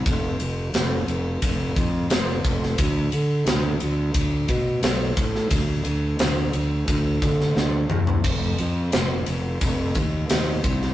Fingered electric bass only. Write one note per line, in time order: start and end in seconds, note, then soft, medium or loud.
0.06 0.35 F1 medium
0.40 0.69 F1 medium
0.74 1.03 F1 medium
1.07 1.37 F1 medium
1.42 1.71 F1 loud
1.76 2.05 F2 medium
2.10 2.39 F1 medium
2.44 2.74 F1 medium
2.79 3.08 D2 loud
3.13 3.42 D3 medium
3.46 3.75 D2 loud
3.82 4.11 D2 medium
4.15 4.44 D2 loud
4.49 4.78 B2 medium
4.83 5.12 B1 medium
5.17 5.46 A2 medium
5.51 5.81 D2 loud
5.85 6.15 D2 medium
6.19 6.49 D2 medium
6.54 6.83 D2 medium
6.87 7.17 D2 loud
7.22 7.52 D3 medium
7.55 7.85 D2 loud
7.91 8.20 E2 medium
8.24 8.54 F1 loud
8.59 8.88 F2 medium
8.93 9.23 F1 medium
9.28 9.57 F1 medium
9.62 9.91 F1 medium
9.95 10.25 D#2 medium
10.30 10.59 D#2 medium
10.64 10.93 C2 loud